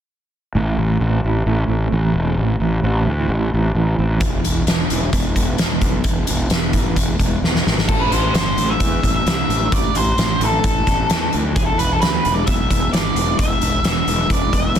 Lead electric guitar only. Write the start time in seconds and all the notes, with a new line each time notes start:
7.88 A4
8.00 B4
8.12 C5
8.35 C5
8.70 E5
9.16 E5
9.73 D5
9.97 C5
10.43 A4
11.56 G#4
11.66 A4
11.78 B4
11.93 A4
12.00 B4
12.34 D5
12.46 E5
12.93 D5
13.39 E5
13.86 E5
14.32 D5
14.55 E5